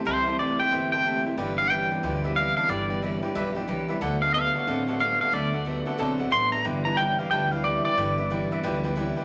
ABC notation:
X:1
M:4/4
L:1/8
Q:"Swing" 1/4=182
K:G
V:1 name="Clean electric guitar"
c2 d g2 g2 z | z =f g4 f f | d4 z4 | z =f f4 f f |
d4 z2 c' _b | z _b g =f g f d d- | d4- d z3 |]
V:2 name="Upright piano"
[cea] [cea] [ceg] [ceg] [ceg] [cea] [cea] [ceg] | [Bdg] [Bdg] [Bde] [Bdg] [Bdg] [Bde] [Bde] [Bda] | [Bdg] [Bdg] [Bde] [Bdg] [Bde] [Bdeg] [Bdg] [Bdeb] | [Adf] [Adf] [Ada] [Adf] [Adf] [Adf] [Adf] [Adf] |
[Ade] [Adf] [Ade] [Adf] [Ada] [Adf] [Ad] [Ada] | [Bdg] [Bda] [Bda] [Bdg] [Bda] [Bdg] [Bdg] [Bdg] | [Bdg] [Bde] [Bdg] [Bde] [Bdg] [Bdg] [Bdg] [Bdg] |]
V:3 name="Steel-string acoustic guitar"
[C,E,A,EG] [A,EG] [E,A,EG] [A,EG] [C,E,A,EG] [A,G] [E,A,EG] [A,EG] | [G,,D,E,G,B,G] [E,G,B,G] [E,G,B,G] [E,G,B,G] [G,,D,E,G,B,G] [E,G,B,G] [E,G,B,G] [E,G,B,G] | [G,,D,E,G,B,G] [E,G,B,G] [E,G,B,G] [E,G,B,G] [G,,D,E,G,B,G] [E,G,B,G] [E,G,B,G] [E,G,B,G] | [D,F,A,B,F] [A,B,F] [F,A,B,F] [A,B,F] [D,F,A,B,F] [A,B,F] [F,A,B,F] [A,B,F] |
[D,F,A,B,F] [A,B,F] [F,A,B,F] [A,B,F] [D,F,A,B,F] [A,B,F] [F,A,B,F] [A,B,F] | [G,,D,E,G,B,E] [E,G,B,E] [E,G,B,E] [E,G,B,E] [G,,D,E,G,B,E] [E,G,B,E] [E,G,B,E] [E,G,B,E] | [G,,D,E,G,B,E] [E,G,B,E] [E,G,B,E] [E,G,B,E] [G,,D,E,G,B,E] [E,G,B,E] [E,G,B,E] [E,G,B,E] |]
V:4 name="Clean electric guitar" clef=bass
[C,G,] [C,G,] [C,A,] [C,A,] [C,_B,] [C,B,] [C,A,] [C,A,] | [G,,D,] [G,,D,] [G,,E,] [G,,E,] [G,,=F,] [G,,F,] [G,,E,] [G,,E,] | [G,,D,] [G,,D,] [G,,E,] [G,,E,] [G,,=F,] [G,,F,] [G,,E,] [G,,E,] | [D,A,] [D,A,] [D,B,] [D,B,] [D,C] [D,C] [D,B,] [D,B,] |
[D,A,] [D,A,] [D,B,] [D,B,] [D,C] [D,C] [D,B,] [D,B,] | [G,,D,] [G,,D,] [G,,E,] [G,,E,] [G,,=F,] [G,,F,] [G,,E,] [G,,E,] | [G,,D,] [G,,D,] [G,,E,] [G,,E,] [G,,=F,] [G,,F,] [G,,E,] [G,,E,] |]
V:5 name="Upright bass" clef=bass
C,,4 G,,,4 | G,,,4 D,,4 | G,,,4 B,,,2 C,,2 | D,,4 A,,,4 |
D,,4 B,,,2 A,,,2 | G,,,4 D,,4 | G,,,4 D,,4 |]